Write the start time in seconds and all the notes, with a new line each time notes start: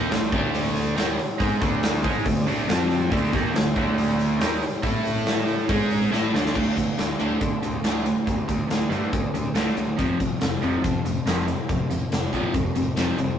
Already playing: A#3 D#4
0.11 D2 D3 A3, snare, open hi-hat
0.32 D2 D3 A3 D4, kick, open hi-hat
0.54 open hi-hat
0.76 open hi-hat
0.96 D#2 D#3 A#3 D#4, snare, open hi-hat
1.19 open hi-hat
1.40 G#2 G#3 D#4 G#4, kick, open hi-hat
1.61 D2 D3 A3 D4, kick, open hi-hat
1.83 snare, open hi-hat
2.03 G#2 G#3 D#4 G#4, kick, open hi-hat
2.26 D2 D3 A3, kick, open hi-hat
2.47 D2 D3 A3 D4, open hi-hat
2.68 F2 F3 C4 F4, snare, open hi-hat
2.91 open hi-hat
3.10 D2 D3 A3 D4, kick, open hi-hat
3.33 D#2 D#3 A#3 D#4, kick, open hi-hat
3.53 D2 D3 A3, snare, open hi-hat
3.76 D2 D3 A3 D4, kick, open hi-hat
3.98 open hi-hat
4.19 open hi-hat
4.39 D#2 D#3 A#3 D#4, snare, open hi-hat
4.62 open hi-hat
4.83 A2 A3 E4 A4, kick, open hi-hat
5.05 open hi-hat
5.26 snare, open hi-hat
5.47 open hi-hat
5.69 G#2 G#3 D#4 G#4, kick, open hi-hat
5.91 open hi-hat
6.12 A2 A3 E4 A4, snare
6.33 D2 D3 A3 D4, snare
6.46 snare
6.54 D2 D3 A3 D4, kick, crash
6.76 A1 D3 A3, kick, closed hi-hat
6.98 D2 D3 A3, snare, closed hi-hat
7.19 D2 D3 A3 D4, closed hi-hat
7.41 D3 A3, kick, closed hi-hat
7.62 D2 D3 A3, closed hi-hat
7.84 D2 D3 A3 D4, snare, closed hi-hat
8.06 D3 A3, closed hi-hat
8.27 D2 D3 A3, kick, closed hi-hat
8.48 D2 D3 A3, kick, closed hi-hat
8.70 D2 D3 A3, snare, closed hi-hat
8.90 G2 D3 A3 D4, closed hi-hat
9.12 D2 D3 A3, kick, closed hi-hat
9.34 D2 D3 A3, closed hi-hat
9.55 D2 D3 A3 D4, snare, closed hi-hat
9.77 D2 D3 A3, closed hi-hat
9.98 F1 F2 C3 F3, kick, closed hi-hat
10.20 C2 F2 C3, kick, closed hi-hat
10.41 F1 F2 C3, snare, closed hi-hat
10.62 F1 F2 C3 F3, closed hi-hat
10.83 F2 C3, kick, closed hi-hat
11.05 F1 F2 C3, closed hi-hat
11.26 F1 F2 C3 F3, snare, closed hi-hat
11.48 F2 C3, closed hi-hat
11.69 F1 F2 C3, kick, closed hi-hat
11.91 F1 F2 C3, closed hi-hat
12.12 F1 F2 C3, snare, closed hi-hat
12.33 A#1 F2 C3 F3, kick, closed hi-hat
12.54 F1 F2 C3, kick, closed hi-hat
12.75 F1 F2 C3, closed hi-hat
12.96 F1 F2 C3 F3, snare, closed hi-hat
13.18 C2 F2 C3, closed hi-hat